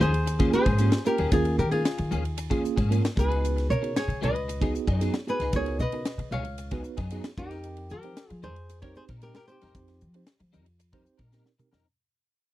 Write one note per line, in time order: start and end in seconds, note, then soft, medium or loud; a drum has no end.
0.00 0.51 D#2 medium
0.00 0.13 F3 medium
0.00 0.12 A#3 medium
0.00 0.12 C#4 medium
0.00 0.11 G#4 medium
0.00 0.51 G#4 medium
0.00 0.52 C5 loud
0.00 hi-hat pedal medium
0.12 muted clean electric guitar stroke soft
0.12 ride medium
0.26 muted clean electric guitar stroke soft
0.26 hi-hat pedal medium
0.26 ride medium
0.39 0.51 F3 soft
0.39 0.66 A#3 loud
0.39 0.51 A#3 medium
0.39 0.51 C#4 medium
0.39 0.66 C#4 medium
0.39 0.66 F4 medium
0.39 0.52 G#4 medium
0.39 0.66 G#4 loud
0.39 kick medium
0.39 ride medium
0.52 1.03 G#4 medium
0.52 1.06 C5 loud
0.52 muted clean electric guitar stroke soft
0.52 hi-hat pedal medium
0.65 0.87 G#2 medium
0.65 0.77 F3 medium
0.65 0.77 A#3 medium
0.65 0.78 C#4 medium
0.65 0.78 G#4 medium
0.65 kick medium
0.65 ride medium
0.78 0.92 F3 medium
0.78 0.91 A#3 medium
0.78 0.97 A#3 medium
0.78 0.91 C#4 medium
0.78 0.97 C#4 medium
0.78 0.97 F4 medium
0.78 0.97 G4 medium
0.78 0.91 G#4 medium
0.78 hi-hat pedal medium
0.78 ride medium
0.92 muted clean electric guitar stroke soft
0.92 snare medium
0.92 ride medium
1.04 1.15 A#3 medium
1.04 1.15 C#4 medium
1.04 1.15 F4 medium
1.04 1.31 G4 medium
1.04 1.15 A#4 medium
1.04 1.33 A#4 medium
1.04 muted clean electric guitar stroke soft
1.04 hi-hat pedal medium
1.18 1.29 D#2 medium
1.18 1.35 A#3 soft
1.18 1.35 C#4 soft
1.18 1.35 G#4 soft
1.18 ride medium
1.32 1.60 D#2 medium
1.32 1.58 A#3 medium
1.32 1.58 C#4 medium
1.32 1.57 F4 medium
1.32 1.58 F4 medium
1.32 1.57 G#4 medium
1.32 1.59 A#4 medium
1.32 kick loud
1.32 hi-hat pedal medium
1.32 ride medium
1.45 muted clean electric guitar stroke soft
1.45 ride medium
1.58 1.79 D#3 medium
1.58 1.71 G4 medium
1.58 1.71 A#4 medium
1.58 hi-hat pedal medium
1.71 1.81 A#3 medium
1.71 1.81 C#4 medium
1.71 1.81 F4 medium
1.71 2.74 F4 medium
1.71 2.73 G#4 medium
1.71 1.81 A#4 medium
1.71 muted clean electric guitar stroke soft
1.71 ride medium
1.85 snare medium
1.85 hi-hat pedal medium
1.85 ride medium
1.98 2.12 D#3 medium
1.98 muted clean electric guitar stroke soft
1.98 ride medium
2.11 2.62 D#2 medium
2.11 2.24 F3 soft
2.11 2.23 A#3 medium
2.11 2.23 C#4 medium
2.11 2.23 G#4 medium
2.11 hi-hat pedal medium
2.24 muted clean electric guitar stroke soft
2.24 ride medium
2.37 muted clean electric guitar stroke soft
2.37 hi-hat pedal medium
2.37 ride medium
2.50 2.62 F3 medium
2.50 2.77 A#3 loud
2.50 2.62 A#3 medium
2.50 2.63 C#4 medium
2.50 2.77 C#4 loud
2.50 2.77 F4 loud
2.50 2.62 G#4 medium
2.50 2.77 G#4 loud
2.50 kick medium
2.50 ride medium
2.63 muted clean electric guitar stroke soft
2.63 hi-hat pedal medium
2.76 2.98 G#2 medium
2.76 2.89 F3 medium
2.76 2.89 A#3 medium
2.76 2.90 C#4 medium
2.76 2.90 G#4 medium
2.76 kick medium
2.76 ride medium
2.90 3.03 F3 medium
2.90 3.07 A#3 medium
2.90 3.02 A#3 medium
2.90 3.07 C#4 medium
2.90 3.02 C#4 medium
2.90 3.08 F4 medium
2.90 3.02 G#4 medium
2.90 3.08 A#4 medium
2.90 hi-hat pedal medium
2.90 ride medium
3.03 muted clean electric guitar stroke soft
3.03 snare loud
3.03 ride medium
3.16 3.71 C#2 medium
3.16 3.69 B3 medium
3.16 3.69 D#4 medium
3.16 3.70 F#4 medium
3.16 3.69 G#4 medium
3.16 3.67 G#4 medium
3.16 3.70 B4 medium
3.16 muted clean electric guitar stroke soft
3.16 kick medium
3.16 hi-hat pedal medium
3.28 3.46 B3 soft
3.28 3.45 D#4 soft
3.28 3.45 G#4 soft
3.28 ride medium
3.45 hi-hat pedal medium
3.45 ride medium
3.56 muted clean electric guitar stroke soft
3.56 snare soft
3.56 ride medium
3.69 3.89 C#3 medium
3.69 3.95 A#4 medium
3.69 3.96 C#5 medium
3.69 hi-hat pedal medium
3.82 3.91 B3 medium
3.82 3.91 D#4 medium
3.82 3.91 F#4 medium
3.82 3.91 G#4 medium
3.82 muted clean electric guitar stroke soft
3.82 ride medium
3.96 4.22 G#4 medium
3.96 4.23 C#5 medium
3.96 snare loud
3.96 hi-hat pedal medium
3.96 ride medium
4.08 4.24 C#3 medium
4.08 muted clean electric guitar stroke soft
4.08 ride medium
4.21 4.73 C#2 medium
4.21 4.35 F#3 medium
4.21 4.34 B3 medium
4.21 4.34 D#4 medium
4.21 4.34 G#4 medium
4.21 4.95 B4 medium
4.21 4.94 D#5 medium
4.21 hi-hat pedal medium
4.35 muted clean electric guitar stroke soft
4.35 ride medium
4.48 muted clean electric guitar stroke soft
4.48 hi-hat pedal medium
4.48 ride medium
4.61 4.73 F#3 medium
4.61 4.87 B3 medium
4.61 4.74 B3 medium
4.61 4.87 D#4 medium
4.61 4.73 D#4 medium
4.61 4.87 F#4 medium
4.61 4.74 G#4 medium
4.61 4.87 G#4 loud
4.61 kick medium
4.61 ride medium
4.74 muted clean electric guitar stroke soft
4.74 hi-hat pedal medium
4.87 5.08 F#2 medium
4.87 4.99 F#3 medium
4.87 5.00 B3 medium
4.87 5.00 D#4 medium
4.87 5.01 G#4 medium
4.87 kick medium
4.87 ride medium
4.94 5.25 A4 medium
4.94 5.24 C#5 medium
5.01 5.14 F#3 medium
5.01 5.18 B3 medium
5.01 5.14 B3 medium
5.01 5.18 D#4 medium
5.01 5.14 D#4 medium
5.01 5.18 F#4 medium
5.01 5.18 G#4 medium
5.01 5.14 G#4 medium
5.01 snare soft
5.01 hi-hat pedal medium
5.01 ride medium
5.14 muted clean electric guitar stroke soft
5.14 snare loud
5.14 ride medium
5.27 5.36 B3 medium
5.27 5.36 D#4 medium
5.27 5.36 F#4 medium
5.27 5.36 G#4 medium
5.27 5.53 G#4 medium
5.27 5.55 B4 medium
5.27 muted clean electric guitar stroke soft
5.27 hi-hat pedal medium
5.40 5.50 C#2 medium
5.40 5.57 B3 soft
5.40 5.57 D#4 soft
5.40 5.56 G#4 soft
5.40 snare soft
5.40 ride medium
5.53 5.81 C#2 medium
5.53 5.79 B3 medium
5.53 5.80 D#4 medium
5.53 5.79 F#4 medium
5.53 5.80 G#4 medium
5.53 5.80 A#4 loud
5.53 5.80 C#5 medium
5.53 kick loud
5.53 hi-hat pedal medium
5.53 ride medium
5.66 muted clean electric guitar stroke soft
5.66 ride medium
5.79 6.00 C#3 medium
5.79 6.30 B4 medium
5.79 6.32 D#5 loud
5.79 hi-hat pedal medium
5.92 6.02 B3 medium
5.92 6.02 D#4 medium
5.92 6.02 F#4 medium
5.92 6.02 A#4 medium
5.92 muted clean electric guitar stroke soft
5.92 ride medium
6.05 snare loud
6.05 hi-hat pedal medium
6.05 ride medium
6.18 6.32 C#3 medium
6.18 muted clean electric guitar stroke soft
6.18 ride medium
6.31 6.82 C#2 medium
6.31 6.45 F#3 medium
6.31 6.44 B3 medium
6.31 6.44 D#4 medium
6.31 6.43 G#4 medium
6.31 7.34 C#5 medium
6.31 7.41 F5 medium
6.31 hi-hat pedal medium
6.45 muted clean electric guitar stroke soft
6.45 ride medium
6.58 muted clean electric guitar stroke soft
6.58 hi-hat pedal medium
6.58 ride medium
6.71 6.82 F#3 soft
6.71 6.82 B3 medium
6.71 6.98 B3 medium
6.71 6.83 D#4 medium
6.71 6.98 D#4 medium
6.71 6.98 F#4 medium
6.71 6.83 G#4 medium
6.71 6.98 B4 loud
6.71 kick medium
6.71 ride medium
6.84 muted clean electric guitar stroke soft
6.84 hi-hat pedal medium
6.97 7.18 F#2 medium
6.97 7.09 F#3 medium
6.97 7.09 B3 medium
6.97 7.10 D#4 medium
6.97 7.10 G#4 medium
6.97 kick medium
6.97 ride medium
7.10 7.24 F#3 medium
7.10 7.23 B3 medium
7.10 7.29 B3 medium
7.10 7.23 D#4 medium
7.10 7.29 D#4 medium
7.10 7.29 F#4 medium
7.10 7.23 G#4 medium
7.10 7.29 G#4 medium
7.10 hi-hat pedal medium
7.10 ride medium
7.24 muted clean electric guitar stroke soft
7.24 snare loud
7.24 ride medium
7.37 7.92 F2 medium
7.37 7.91 C4 medium
7.37 7.91 D#4 medium
7.37 7.87 D#4 medium
7.37 7.92 G4 medium
7.37 7.91 G4 medium
7.37 7.91 A#4 medium
7.37 muted clean electric guitar stroke soft
7.37 kick loud
7.37 hi-hat pedal medium
7.51 7.67 C4 soft
7.51 7.67 D#4 soft
7.51 7.67 A#4 medium
7.51 snare soft
7.51 ride medium
7.64 hi-hat pedal medium
7.64 ride medium
7.77 muted clean electric guitar stroke soft
7.77 ride medium
7.89 8.11 F3 medium
7.89 8.40 A#4 medium
7.89 hi-hat pedal medium
7.93 8.41 G4 medium
8.03 8.12 C4 medium
8.03 8.12 D#4 medium
8.03 8.13 G4 medium
8.03 8.13 C5 medium
8.03 muted clean electric guitar stroke soft
8.03 ride medium
8.17 snare loud
8.17 hi-hat pedal medium
8.17 ride medium
8.30 8.45 F3 medium
8.30 muted clean electric guitar stroke soft
8.30 ride medium
8.42 8.94 F2 medium
8.42 8.56 G3 medium
8.42 8.55 C4 medium
8.42 8.54 D#4 medium
8.42 8.80 G#4 medium
8.42 8.54 A#4 medium
8.42 8.80 C5 medium
8.42 hi-hat pedal medium
8.55 muted clean electric guitar stroke soft
8.55 ride medium
8.69 muted clean electric guitar stroke soft
8.69 hi-hat pedal medium
8.69 ride medium
8.82 8.95 G3 medium
8.82 8.95 C4 medium
8.82 9.09 C4 loud
8.82 8.95 D#4 medium
8.82 9.09 D#4 medium
8.82 9.09 G4 medium
8.82 8.95 A#4 medium
8.82 9.09 C5 loud
8.82 8.96 C#5 medium
8.82 kick medium
8.82 ride medium
8.95 9.04 G#4 medium
8.95 9.04 C5 medium
8.95 muted clean electric guitar stroke soft
8.95 hi-hat pedal medium
9.08 9.29 A#2 medium
9.08 9.20 G3 medium
9.08 9.21 C4 medium
9.08 9.21 D#4 medium
9.08 9.21 A#4 medium
9.08 kick medium
9.08 ride medium
9.21 9.35 G3 medium
9.21 9.35 C4 medium
9.21 9.40 C4 medium
9.21 9.34 D#4 medium
9.21 9.40 D#4 medium
9.21 9.35 G4 medium
9.21 9.40 G4 medium
9.21 9.34 A#4 medium
9.21 9.35 A#4 medium
9.21 9.40 A#4 medium
9.21 snare soft
9.21 hi-hat pedal medium
9.21 ride medium
9.34 9.49 G4 medium
9.34 9.47 A#4 medium
9.34 muted clean electric guitar stroke soft
9.34 snare loud
9.34 ride medium
9.48 9.58 C4 medium
9.48 9.58 D#4 medium
9.48 9.58 G4 medium
9.48 11.30 G4 medium
9.48 11.28 C5 medium
9.48 9.58 C5 medium
9.48 muted clean electric guitar stroke soft
9.48 hi-hat pedal medium
9.61 9.72 F2 medium
9.61 9.78 C4 soft
9.61 9.77 D#4 soft
9.61 9.77 A#4 medium
9.61 snare soft
9.61 ride medium
9.75 10.03 F2 medium
9.75 10.01 C4 medium
9.75 10.01 D#4 medium
9.75 10.01 G4 medium
9.75 10.01 C5 loud
9.75 kick loud
9.75 hi-hat pedal medium
9.75 ride medium
9.88 muted clean electric guitar stroke soft
9.88 snare soft
9.88 ride medium
10.01 10.22 F3 medium
10.01 hi-hat pedal medium
10.14 10.23 C4 medium
10.14 10.23 D#4 medium
10.14 10.23 G4 medium
10.14 10.24 C5 medium
10.14 muted clean electric guitar stroke soft
10.14 ride medium
10.26 snare loud
10.26 hi-hat pedal medium
10.26 ride medium
10.40 10.56 F3 medium
10.40 muted clean electric guitar stroke medium
10.40 ride medium
10.52 11.05 F2 medium
10.52 10.66 G3 medium
10.52 10.66 C4 medium
10.52 10.66 D#4 medium
10.52 10.65 A#4 medium
10.52 hi-hat pedal medium
10.66 muted clean electric guitar stroke soft
10.66 ride medium
10.79 muted clean electric guitar stroke soft
10.79 hi-hat pedal medium
10.79 ride medium
10.93 11.04 G3 medium
10.93 11.04 C4 medium
10.93 11.19 C4 loud
10.93 11.04 D#4 medium
10.93 11.19 D#4 loud
10.93 11.19 G4 loud
10.93 11.04 A#4 medium
10.93 11.19 C5 loud
10.93 kick medium
10.93 ride medium
11.05 muted clean electric guitar stroke soft
11.05 hi-hat pedal medium
11.18 11.40 A#2 medium
11.18 11.30 G3 medium
11.18 11.30 C4 medium
11.18 11.31 D#4 medium
11.18 11.32 A#4 medium
11.18 kick medium
11.18 ride medium
11.31 11.45 G3 medium
11.31 11.44 C4 medium
11.31 11.50 C4 medium
11.31 11.44 D#4 medium
11.31 11.50 D#4 medium
11.31 11.50 G4 medium
11.31 11.44 A#4 medium
11.31 11.50 A#4 medium
11.31 snare medium
11.31 hi-hat pedal medium
11.45 muted clean electric guitar stroke soft
11.45 snare medium
11.58 11.68 C4 medium
11.58 11.68 D#4 medium
11.58 11.68 G4 medium
11.58 11.68 A#4 medium
11.58 muted clean electric guitar stroke soft
11.58 hi-hat pedal medium
11.58 mid tom medium
11.72 11.82 F2 medium
11.72 11.85 C4 soft
11.72 11.85 D#4 medium
11.72 11.85 A#4 medium
11.72 snare medium